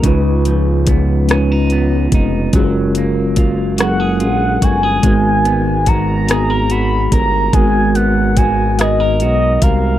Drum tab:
HH |xxxxxx|xxxxxx|xxxxxx|xxxxxx|
SD |---r--|---r--|---r--|---r--|
BD |o-o--o|o-o--o|o-o--o|o-o--o|